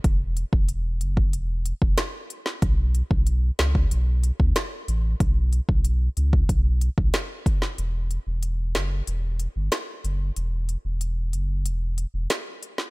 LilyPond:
<<
  \new Staff \with { instrumentName = "Sub bass" } { \clef bass \time 4/4 \key e \dorian \tempo 4 = 93 e,,8. e,,8. fis,,8 e,,8. e,,16 r4 | b,,8. b,,8. cis,8 b,,8. d,16 r8 a,,8 | b,,8. b,,8. cis,8 b,,8. b,,16 r4 | e,,8. e,,8. fis,,8 e,,8. g,,16 r8 fis,,8 |
e,,8. e,,8. fis,,8 e,,8. e,,16 r4 | }
  \new DrumStaff \with { instrumentName = "Drums" } \drummode { \time 4/4 <hh bd>8 hh16 bd16 hh8 hh16 bd16 hh8 hh16 bd16 <hh ss sn>8 hh16 sn16 | <hh bd>8 hh16 bd16 hh8 <hh ss sn>16 bd16 hh8 hh16 bd16 <hh ss sn>8 hh8 | <hh bd>8 hh16 bd16 hh8 hh16 bd16 <hh bd>8 hh16 bd16 <hh ss sn>8 <hh bd>16 sn16 | hh8 hh8 hh8 <hh ss sn>8 hh8 hh8 <hh ss sn>8 hh8 |
hh8 hh8 hh8 hh8 hh8 hh8 <hh ss sn>8 hh16 sn16 | }
>>